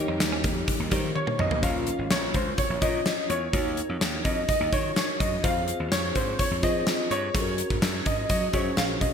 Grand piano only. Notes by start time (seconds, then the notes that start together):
1.15 C#5
1.39 D#5
1.63 F5
2.11 C#5
2.34 C5
2.58 C#5
2.82 D#5
3.30 C#5
4.24 D#5
4.49 D#5
4.73 C#5
4.96 C#5
5.20 D#5
5.44 F5
5.92 C#5
6.15 C5
6.39 C#5
6.63 D#5
7.11 C#5
8.06 D#5
8.30 D#5
8.54 C#5
8.77 F5
9.01 D#5